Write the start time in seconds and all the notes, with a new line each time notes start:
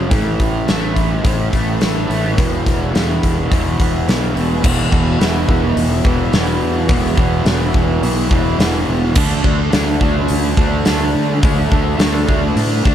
Already playing: C#4
0.09 A1 A2 E3 A3, kick, open hi-hat
0.40 A1, kick, open hi-hat
0.67 A1 A2 E3 A3, snare, open hi-hat
0.96 kick, open hi-hat
1.23 A1 A2 E3, kick, open hi-hat
1.27 A3
1.50 A1 A3, kick, open hi-hat
1.55 E3
1.81 A1, snare, open hi-hat
2.07 A1 E3 A3, open hi-hat
2.35 E1 E2 B2, kick, open hi-hat
2.39 E3
2.66 E1, kick, snare, open hi-hat
2.92 E1 E2 B2 E3, snare, open hi-hat
3.23 E1, kick, open hi-hat
3.50 E1 E2 B2 E3, kick, open hi-hat
3.78 E1 B2 E3, kick, open hi-hat
4.08 B1, snare, open hi-hat
4.34 E1 B2 E3, open hi-hat
4.61 E1 E2 B2 E3, kick, crash
4.90 E1 B2 E3, kick
5.19 E1 E2 B2 E3, snare, open hi-hat
5.48 E1 B2 E3, kick
5.76 E1, open hi-hat
6.04 E1 B2 E3, kick
6.33 E1 E2 B2 E3, snare, open hi-hat
6.62 E2
6.88 E1 E2 B2 E3, kick, open hi-hat
7.17 E1 B2 E3, kick
7.44 E1 E2 B2 E3, snare, open hi-hat
7.74 E1 B2 E3, kick
8.03 B1, open hi-hat
8.30 E1 E3, kick
8.34 B2
8.59 E1 E2 B2 E3, snare, open hi-hat
8.88 E1
9.15 D2 D3 A3 D4, kick, crash
9.43 D2 D4, kick
9.47 A3
9.71 D2 D3 A3 D4, snare, open hi-hat
10.01 D2 A3 D4, kick
10.28 D2, open hi-hat
10.57 D2 A3 D4, kick
10.85 D2 D3 A3 D4, snare, open hi-hat
11.15 D3
11.42 D2 D3 A3 D4, kick, open hi-hat
11.70 D2 A3 D4, kick
11.98 D2 D3 A3 D4, snare, open hi-hat
12.26 D2 A3 D4, kick
12.56 A2, open hi-hat
12.84 D2 A3 D4, kick